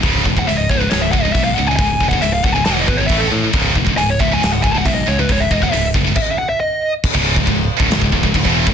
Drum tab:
CC |----------------|----------------|----------------|--------x-------|
HH |o---o---o---o---|o---o---o---o---|o---o---o---o---|o---o-----------|
SD |--------o-------|--------o-------|--------o-------|----------------|
BD |o-oo--o---o-o---|o-oo--o---o-o---|o-oo--o---o-o---|o-oo--o-o-------|

CC |x---x---x---x---|
HH |----------------|
SD |--------o-------|
BD |oo-oo--o-ooooo-o|